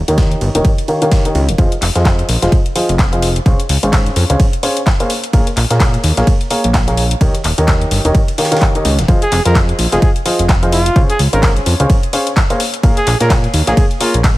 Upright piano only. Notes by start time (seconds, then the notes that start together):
0.08 D#3 G4 A#4 C#5 D#5
0.55 D#3 G4 A#4 C#5 D#5
0.88 D#3 G4 A#4 C#5 F5
1.02 D#3 G4 A#4 C#5 F5
1.25 D#3 G4 A#4 C#5 D#5
1.58 F3 G#4 C5 D#5 F5
1.96 F3 G#4 C5 D#5 F5
2.42 F3 G#4 C5 D#5 F5
2.76 F3 G#4 C5 D#5 F5
3.13 F3 G#4 C5 D#5 F5
3.46 C#4 G#4 C5 C#5 F5
3.83 C#4 G#4 C5 C#5 F5
4.30 C#4 G#4 C5 C#5 F5
4.63 C#4 G#4 C5 C#5 F5
5.00 A#3 G#4 C5 C#5 F5
5.33 A#3 G#4 A#4 C#5 F5
5.70 A#3 G#4 A#4 C#5 F5
6.17 A#3 G#4 A#4 C#5 F5
6.50 A#3 G#4 A#4 C#5 F5
6.88 A#3 G#4 A#4 C#5 F5
7.21 D#3 G4 A#4 C#5 D#5
7.58 D#3 G4 A#4 C#5 D#5
8.05 D#3 G4 A#4 C#5 D#5
8.38 D#3 G4 A#4 C#5 F5
8.52 D#3 G4 A#4 C#5 F5
8.75 D#3 G4 A#4 C#5 D#5
9.08 F3 G#4 C5 D#5 F5
9.46 F3 G#4 C5 D#5 F5
9.92 F3 G#4 C5 D#5 F5
10.26 F3 G#4 C5 D#5 F5
10.63 F3 G#4 C5 D#5 F5
10.96 C#4 G#4 C5 C#5 F5
11.33 C#4 G#4 C5 C#5 F5
11.80 C#4 G#4 C5 C#5 F5
12.13 C#4 G#4 C5 C#5 F5
12.50 A#3 G#4 C5 C#5 F5
12.83 A#3 G#4 A#4 C#5 F5
13.21 A#3 G#4 A#4 C#5 F5
13.67 A#3 G#4 A#4 C#5 F5
14.01 A#3 G#4 A#4 C#5 F5